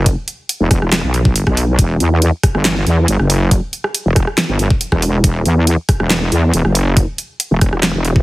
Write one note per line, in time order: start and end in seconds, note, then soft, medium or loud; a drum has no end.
0.00 0.15 F#1 medium
0.06 kick loud
0.06 closed hi-hat medium
0.28 closed hi-hat medium
0.49 closed hi-hat medium
0.60 0.80 E1 loud
0.71 kick loud
0.71 cross-stick soft
0.71 closed hi-hat medium
0.82 1.02 E1 loud
0.82 cross-stick medium
0.92 snare loud
0.92 clap medium
0.92 closed hi-hat medium
1.04 1.45 B1 medium
1.14 closed hi-hat medium
1.25 kick loud
1.36 closed hi-hat medium
1.47 1.77 B1 loud
1.47 kick medium
1.47 cross-stick medium
1.57 open hi-hat medium
1.79 1.99 E1 loud
1.79 kick loud
1.79 closed hi-hat medium
2.00 2.31 E2 medium
2.00 closed hi-hat medium
2.22 closed hi-hat medium
2.43 kick loud
2.43 cross-stick medium
2.43 closed hi-hat medium
2.55 2.85 G1 loud
2.55 cross-stick medium
2.65 snare loud
2.65 clap medium
2.65 closed hi-hat medium
2.76 snare soft
2.87 3.06 E2 medium
2.87 closed hi-hat medium
3.08 3.18 G1 loud
3.08 closed hi-hat medium
3.19 3.61 F#1 medium
3.19 cross-stick medium
3.30 open hi-hat medium
3.51 kick loud
3.51 closed hi-hat medium
3.73 closed hi-hat soft
3.84 cross-stick medium
3.95 closed hi-hat medium
4.06 4.26 E1 loud
4.16 kick loud
4.16 cross-stick medium
4.16 closed hi-hat soft
4.27 cross-stick medium
4.38 snare loud
4.38 clap medium
4.38 closed hi-hat medium
4.49 4.69 G1 loud
4.59 closed hi-hat soft
4.70 kick loud
4.81 closed hi-hat medium
4.92 5.22 E1 loud
4.92 kick medium
4.92 cross-stick medium
5.02 open hi-hat medium
5.24 5.44 E1 loud
5.24 kick loud
5.24 closed hi-hat medium
5.46 5.77 E2 loud
5.46 closed hi-hat medium
5.67 closed hi-hat medium
5.89 kick loud
5.89 cross-stick medium
5.89 closed hi-hat soft
6.00 6.30 E1 loud
6.00 cross-stick medium
6.10 snare loud
6.10 clap medium
6.10 closed hi-hat medium
6.22 snare soft
6.32 6.52 E2 loud
6.32 closed hi-hat medium
6.53 6.63 E1 loud
6.53 closed hi-hat medium
6.65 7.06 F#1 medium
6.65 cross-stick medium
6.75 open hi-hat loud
6.97 kick loud
6.97 closed hi-hat medium
7.18 closed hi-hat medium
7.40 closed hi-hat medium
7.51 7.71 E1 loud
7.61 kick loud
7.61 cross-stick medium
7.61 closed hi-hat medium
7.73 7.92 E1 medium
7.73 cross-stick medium
7.83 snare loud
7.83 clap medium
7.83 closed hi-hat medium
7.94 8.23 E1 medium
8.05 closed hi-hat medium
8.16 kick loud